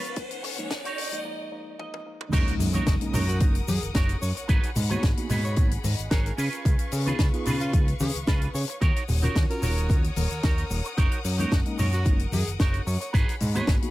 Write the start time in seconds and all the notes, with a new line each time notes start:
Already playing: C#3 B3 F4 B4 C#5 F5, riser
0.05 closed hi-hat
0.16 D#3 C#4 F#5, kick, closed hi-hat
0.31 closed hi-hat
0.43 muted clean electric guitar stroke, open hi-hat
0.57 F3 G#3 A#3 D#4, muted clean electric guitar stroke, closed hi-hat
0.71 kick, snare, closed hi-hat
0.84 D#4 F#4 C#5, closed hi-hat
0.98 open hi-hat
1.11 F3 G#3 A#3 D#4, closed hi-hat
1.24 F3 G#3 A#3 D#4
1.51 F3 G#3 A#3 D#4
1.78 F3 G#3 A#3 D#4 D#5, high tom
1.94 high tom
2.06 F3 G#3 A#3 D#4
2.21 mid tom
2.32 F#1 G#3 A#3 C#4 D#4 F#4 A#4 C#5 F#5 D#6, kick, closed hi-hat, crash, impact, shaker
2.48 closed hi-hat
2.60 F#2, open hi-hat, shaker
2.73 G#3 A#3 C#4 D#4 F#4 A#4 C#5, closed hi-hat, high conga, shaker
2.87 F#1, kick, snare, closed hi-hat, shaker
3.01 G#3 A#3 C#4 D#4, closed hi-hat
3.13 F#2 D#4 F#4 A#4 C#5, open hi-hat, low conga, shaker
3.28 F#4, closed hi-hat, shaker
3.40 F#1 G#3 A#3 C#4 D#4, kick, closed hi-hat, shaker
3.55 closed hi-hat
3.68 F#2 G#4, open hi-hat, high conga, shaker
3.82 F#1, closed hi-hat, shaker
3.94 F#1 D#4 F#4 A#4 C#5, kick, snare, closed hi-hat, shaker
4.09 closed hi-hat
4.22 F#2 C#5, open hi-hat, shaker
4.35 C#5, muted clean electric guitar stroke, closed hi-hat, shaker
4.48 G#1 D#4 F#4 G#4 B4 B5, kick, closed hi-hat, shaker
4.63 closed hi-hat
4.76 G#2, open hi-hat, low conga, shaker
4.89 A#3 B3 D#4 F#4 G#4 B4 C#5, closed hi-hat, high conga, shaker
5.03 G#1, kick, snare, closed hi-hat, shaker
5.17 A#3 B3 D#4 F#4, closed hi-hat
5.29 G#2 D#4 F#4 G#4 B4, open hi-hat, low conga, shaker
5.45 C#5, closed hi-hat, shaker
5.56 G#1 A#3 B3 D#4 F#4 C#5, kick, closed hi-hat, shaker
5.71 closed hi-hat
5.84 G#2 D#5, open hi-hat, high conga, shaker
5.98 G#1, closed hi-hat, shaker
6.10 G#1 D#4 F#4 G#4 A#4 C#5 G#5, kick, snare, closed hi-hat, shaker
6.26 A#4, closed hi-hat
6.37 C#3 C#4 F4 G#4 B4 F5 C#6, open hi-hat, shaker
6.53 closed hi-hat, shaker
6.65 C#2, kick, closed hi-hat, shaker
6.79 closed hi-hat
6.92 C#3, open hi-hat, shaker
7.06 B3 C#4 D#4 F4 G#4 B4, closed hi-hat, high conga, shaker
7.19 C#2, kick, snare, closed hi-hat, shaker
7.33 B3 D#4 F4 G#4, closed hi-hat
7.45 C#3 C#4 F4 G#4 B4, open hi-hat, low conga, shaker
7.60 F4, closed hi-hat, shaker
7.73 C#2 B3 D#4 F4 G#4, kick, closed hi-hat, shaker
7.88 closed hi-hat
8.00 C#3 G#4, open hi-hat, high conga, shaker
8.15 C#2, closed hi-hat, shaker
8.26 C#2 C#4 F4 G#4 B4, kick, snare, closed hi-hat, shaker
8.41 closed hi-hat
8.54 C#3 C#5, open hi-hat, shaker
8.68 C#5, muted clean electric guitar stroke, closed hi-hat, shaker
8.81 D#2 D#4 F#4 A#4 C#5 F#5 D#6, kick, closed hi-hat, shaker
8.96 closed hi-hat
9.08 D#1, open hi-hat, low conga, shaker
9.22 C#4 D#4 F4 F#4 A#4 C#5, closed hi-hat, high conga, low conga, shaker
9.36 D#2, kick, snare, closed hi-hat, shaker
9.50 C#4 F4 F#4 A#4, closed hi-hat
9.62 D#1 D#4 F#4 A#4 C#5, open hi-hat, low conga, shaker
9.77 closed hi-hat, shaker
9.89 D#2 C#4 F4 F#4 A#4, kick, closed hi-hat, shaker
10.04 closed hi-hat
10.16 D#1 A#4, open hi-hat, high conga, shaker
10.30 D#2, closed hi-hat, shaker
10.43 D#2 D#4 F#4 A#4 C#5, kick, snare, closed hi-hat, shaker
10.58 closed hi-hat
10.70 D#1, open hi-hat, shaker
10.84 muted clean electric guitar stroke, closed hi-hat, shaker
10.97 F#1 D#4 F#4 A#4 C#5, kick, closed hi-hat, shaker
11.12 closed hi-hat
11.25 F#2, open hi-hat, shaker
11.38 G#3 A#3 C#4 D#4 F#4 A#4 C#5, closed hi-hat, high conga, shaker
11.52 F#1, kick, snare, closed hi-hat, shaker
11.66 G#3 A#3 C#4 D#4, closed hi-hat
11.78 F#2 D#4 F#4 A#4 C#5, open hi-hat, low conga, shaker
11.93 F#4, closed hi-hat, shaker
12.05 F#1 G#3 A#3 C#4 D#4, kick, closed hi-hat, shaker
12.19 closed hi-hat
12.32 F#2 G#4, open hi-hat, high conga, shaker
12.47 F#1, closed hi-hat, shaker
12.59 F#1 D#4 F#4 A#4 C#5, kick, snare, closed hi-hat, shaker
12.74 closed hi-hat
12.87 F#2 C#5, open hi-hat, shaker
13.00 C#5, muted clean electric guitar stroke, closed hi-hat, shaker
13.13 G#1 D#4 F#4 G#4 B4 B5, kick, closed hi-hat, shaker
13.29 closed hi-hat
13.40 G#2, open hi-hat, low conga, shaker
13.54 A#3 B3 D#4 F#4 G#4 B4 C#5, closed hi-hat, high conga, shaker
13.67 G#1, kick, snare, closed hi-hat, shaker
13.82 A#3 B3 D#4 F#4, closed hi-hat